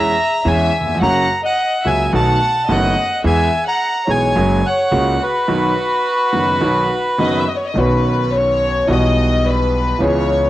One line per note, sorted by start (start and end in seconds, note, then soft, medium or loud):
0.00 0.13 E2 medium
0.00 0.13 E3 medium
0.00 0.13 G#3 medium
0.00 0.13 C#4 medium
0.00 0.13 G#4 medium
0.00 0.42 E5 medium
0.00 0.48 A#5 medium
0.45 0.69 E2 medium
0.45 0.69 E3 medium
0.45 0.69 G#3 medium
0.45 0.69 C#4 medium
0.45 0.69 G#4 medium
0.45 0.97 E5 medium
0.45 0.98 G#5 medium
0.80 0.87 D#2 soft
0.87 0.94 E2 soft
0.94 1.02 F2 medium
1.01 1.25 F#1 medium
1.01 1.25 F#2 medium
1.01 1.25 C#3 medium
1.01 1.25 F#3 medium
1.01 1.25 A#3 medium
1.01 1.25 F#4 medium
1.01 1.40 F#5 medium
1.01 1.41 A#5 medium
1.44 1.82 D#5 medium
1.44 1.87 F#5 medium
1.84 2.09 C#2 soft
1.84 2.09 C#2 medium
1.84 2.08 C#3 soft
1.84 2.08 F#3 soft
1.84 2.09 A#3 soft
1.84 2.09 F#4 soft
1.84 2.10 E5 medium
1.84 2.12 G#5 medium
2.13 2.37 B1 medium
2.13 2.37 B2 medium
2.13 2.36 D#3 medium
2.13 2.37 A3 soft
2.13 2.37 B3 medium
2.13 2.37 F#4 medium
2.13 2.65 F#5 medium
2.13 2.72 A5 medium
2.68 2.92 F#1 medium
2.68 2.92 F#2 medium
2.68 2.92 D#3 medium
2.68 2.92 A3 soft
2.68 2.92 B3 medium
2.68 2.92 F#4 medium
2.68 3.20 D#5 medium
2.68 3.22 F#5 medium
3.24 3.48 E2 medium
3.24 3.48 E3 medium
3.24 3.48 G#3 medium
3.24 3.48 B3 medium
3.24 3.48 G#4 medium
3.24 3.64 E5 medium
3.24 3.64 G#5 medium
3.66 4.05 F#5 medium
3.66 4.10 A#5 medium
4.07 4.31 B1 soft
4.07 4.32 B1 medium
4.07 4.32 B2 soft
4.07 4.31 E3 soft
4.07 4.32 G#3 soft
4.07 4.32 B3 soft
4.07 4.32 G#4 soft
4.07 4.60 C#5 medium
4.07 4.67 G#5 medium
4.36 4.60 F#1 medium
4.36 4.60 F#2 medium
4.36 4.59 C#3 medium
4.36 4.60 F#3 medium
4.36 4.59 G#3 medium
4.36 4.60 A#3 medium
4.36 4.60 F#4 medium
4.64 5.16 C#5 medium
4.64 5.23 F#5 medium
4.91 5.16 C#2 medium
4.91 5.16 C#3 medium
4.91 5.16 G#3 medium
4.91 5.16 A#3 medium
4.91 5.16 F#4 medium
5.20 7.43 F#4 medium
5.20 7.45 B4 medium
5.48 5.72 B1 medium
5.48 5.72 B2 medium
5.48 5.72 D#3 medium
5.48 5.72 F#3 medium
5.48 5.72 B3 medium
5.48 5.72 F#4 medium
6.32 6.57 F#1 soft
6.32 6.57 F#2 soft
6.32 6.57 D#3 soft
6.32 6.57 F#3 soft
6.32 6.57 B3 soft
6.32 6.57 F#4 soft
6.61 6.85 B1 medium
6.61 6.85 B2 medium
6.61 6.85 D#3 medium
6.61 6.85 F#3 medium
6.61 6.85 B3 soft
6.61 6.85 F#4 medium
7.18 7.42 F#1 medium
7.18 7.43 F#2 medium
7.18 7.43 D#3 medium
7.18 7.43 F#3 medium
7.18 7.43 B3 soft
7.18 7.43 F#4 medium
7.18 7.38 D#5 medium
7.38 7.48 E5 medium
7.47 7.57 D#5 medium
7.56 7.66 C#5 medium
7.66 7.76 D#5 medium
7.74 8.83 B1 medium
7.74 8.83 B2 medium
7.74 8.82 D#3 soft
7.74 8.83 B3 soft
7.74 8.83 C#4 soft
7.74 8.33 B4 medium
7.78 8.84 F#4 medium
8.33 8.89 C#5 medium
8.86 9.95 B1 medium
8.86 9.95 B2 medium
8.86 9.94 E3 soft
8.86 9.95 G3 soft
8.86 9.95 B3 soft
8.86 9.45 D#5 medium
8.91 9.96 F#4 medium
9.46 10.02 B4 medium
9.98 10.50 C#2 medium
9.98 10.50 C#3 medium
9.98 10.50 E3 soft
9.98 10.50 B3 soft
9.98 10.50 C#4 soft
9.98 10.50 G#4 medium
9.98 10.50 C#5 medium